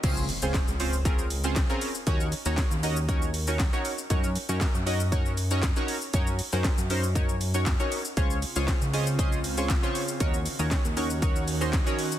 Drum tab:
CC |x---------------|----------------|----------------|----------------|
HH |x-o-x-o-x-o-x-o-|x-o-x-o-x-o-x-o-|x-o-x-o-x-o-x-o-|x-o-x-o-x-o-x-o-|
SH |xxxxxxxxxxxxxxxx|xxxxxxxxxxxxxxxx|xxxxxxxxxxxxxxxx|xxxxxxxxxxxxxxxx|
CP |----x-------x---|----x-------x---|----x-------x---|----x-------x---|
SD |----o-------o---|----o-------o---|----o-------o---|----o-------o---|
BD |o---o---o---o---|o---o---o---o---|o---o---o---o---|o---o---o---o---|

CC |----------------|----------------|
HH |x-o-x-o-x-o-x-o-|x-o-x-o-x-o-x-o-|
SH |xxxxxxxxxxxxxxxx|xxxxxxxxxxxxxxxx|
CP |----x-------x---|----x-------x---|
SD |----o-------o---|----o-------o---|
BD |o---o---o---o---|o---o---o---o---|